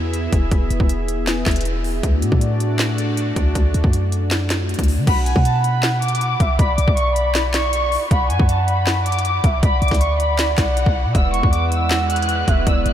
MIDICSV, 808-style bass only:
0, 0, Header, 1, 2, 480
1, 0, Start_track
1, 0, Tempo, 379747
1, 651, Time_signature, 4, 2, 24, 8
1, 16345, End_track
2, 0, Start_track
2, 0, Title_t, "808-style bass"
2, 0, Program_c, 0, 38
2, 0, Note_on_c, 0, 40, 103
2, 361, Note_off_c, 0, 40, 0
2, 411, Note_on_c, 0, 28, 99
2, 641, Note_off_c, 0, 28, 0
2, 651, Note_on_c, 0, 28, 103
2, 882, Note_off_c, 0, 28, 0
2, 891, Note_on_c, 0, 28, 106
2, 1006, Note_off_c, 0, 28, 0
2, 1011, Note_on_c, 0, 28, 99
2, 1818, Note_off_c, 0, 28, 0
2, 1851, Note_on_c, 0, 28, 102
2, 2542, Note_off_c, 0, 28, 0
2, 2571, Note_on_c, 0, 38, 100
2, 2811, Note_on_c, 0, 45, 97
2, 2830, Note_off_c, 0, 38, 0
2, 2925, Note_off_c, 0, 45, 0
2, 2932, Note_on_c, 0, 45, 99
2, 4201, Note_off_c, 0, 45, 0
2, 4251, Note_on_c, 0, 38, 102
2, 4482, Note_off_c, 0, 38, 0
2, 4492, Note_on_c, 0, 38, 105
2, 4722, Note_off_c, 0, 38, 0
2, 4732, Note_on_c, 0, 38, 103
2, 4847, Note_off_c, 0, 38, 0
2, 4852, Note_on_c, 0, 42, 101
2, 6004, Note_off_c, 0, 42, 0
2, 6051, Note_on_c, 0, 38, 112
2, 6292, Note_on_c, 0, 50, 105
2, 6311, Note_off_c, 0, 38, 0
2, 6405, Note_off_c, 0, 50, 0
2, 6412, Note_on_c, 0, 35, 109
2, 6757, Note_off_c, 0, 35, 0
2, 6772, Note_on_c, 0, 47, 105
2, 8041, Note_off_c, 0, 47, 0
2, 8091, Note_on_c, 0, 35, 104
2, 8322, Note_off_c, 0, 35, 0
2, 8331, Note_on_c, 0, 35, 109
2, 8562, Note_off_c, 0, 35, 0
2, 8571, Note_on_c, 0, 35, 108
2, 8686, Note_off_c, 0, 35, 0
2, 8692, Note_on_c, 0, 35, 102
2, 10081, Note_off_c, 0, 35, 0
2, 10251, Note_on_c, 0, 35, 108
2, 10491, Note_on_c, 0, 42, 102
2, 10510, Note_off_c, 0, 35, 0
2, 10605, Note_off_c, 0, 42, 0
2, 10612, Note_on_c, 0, 42, 107
2, 11881, Note_off_c, 0, 42, 0
2, 11931, Note_on_c, 0, 35, 105
2, 12162, Note_off_c, 0, 35, 0
2, 12171, Note_on_c, 0, 35, 106
2, 12401, Note_off_c, 0, 35, 0
2, 12411, Note_on_c, 0, 35, 109
2, 12526, Note_off_c, 0, 35, 0
2, 12532, Note_on_c, 0, 38, 102
2, 13338, Note_off_c, 0, 38, 0
2, 13371, Note_on_c, 0, 35, 105
2, 13717, Note_off_c, 0, 35, 0
2, 13731, Note_on_c, 0, 35, 114
2, 13971, Note_on_c, 0, 47, 103
2, 13990, Note_off_c, 0, 35, 0
2, 14085, Note_off_c, 0, 47, 0
2, 14091, Note_on_c, 0, 28, 104
2, 14437, Note_off_c, 0, 28, 0
2, 14452, Note_on_c, 0, 40, 103
2, 15721, Note_off_c, 0, 40, 0
2, 15771, Note_on_c, 0, 28, 105
2, 16002, Note_off_c, 0, 28, 0
2, 16011, Note_on_c, 0, 28, 113
2, 16242, Note_off_c, 0, 28, 0
2, 16252, Note_on_c, 0, 28, 108
2, 16345, Note_off_c, 0, 28, 0
2, 16345, End_track
0, 0, End_of_file